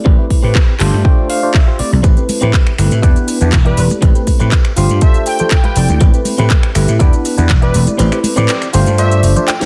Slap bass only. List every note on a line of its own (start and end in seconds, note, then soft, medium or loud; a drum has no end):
0.06 0.15 A1 medium
0.44 0.52 A2 medium
0.80 0.89 G1 medium
0.94 1.02 G2 medium
1.80 muted slap bass stroke soft
1.93 2.01 C2 medium
2.04 2.13 A1 medium
2.43 2.51 A2 medium
2.78 2.88 G1 medium
2.91 3.00 A2 medium
3.03 3.13 E2 medium
3.41 3.50 E2 medium
3.53 3.71 E1 medium
3.78 3.87 E1 medium
4.02 4.12 A1 medium
4.41 4.49 A2 medium
4.77 4.86 G1 medium
4.90 4.99 G2 medium
5.76 5.85 F1 medium
5.89 5.98 D2 medium
6.01 6.10 A1 medium
6.39 6.47 A2 medium
6.75 6.85 G1 medium
6.88 6.97 A2 medium
7.00 7.09 E2 medium
7.38 7.46 E2 medium
7.50 7.68 E1 medium
7.75 7.84 E1 medium
7.99 8.08 A1 medium
8.37 8.46 A2 medium
8.74 8.83 G1 medium
8.87 9.25 G2 medium
9.23 9.32 G1 medium